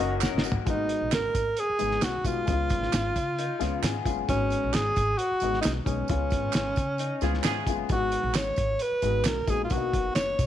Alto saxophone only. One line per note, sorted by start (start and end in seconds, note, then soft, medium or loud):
0.00 0.45 F#4 medium
0.69 1.10 D#4 medium
1.14 1.61 A#4 loud
1.60 2.05 G#4 loud
2.04 2.28 F#4 medium
2.27 4.07 F4 medium
4.29 4.76 C#4 medium
4.74 5.19 G#4 loud
5.18 5.61 F#4 loud
5.61 5.72 D#4 medium
5.86 7.63 C#4 medium
7.92 8.38 F#4 loud
8.37 8.84 C#5 medium
8.82 9.28 B4 loud
9.27 9.51 A#4 medium
9.50 9.64 G#4 medium
9.64 9.73 F4 medium
9.72 10.15 F#4 medium
10.16 10.46 C#5 loud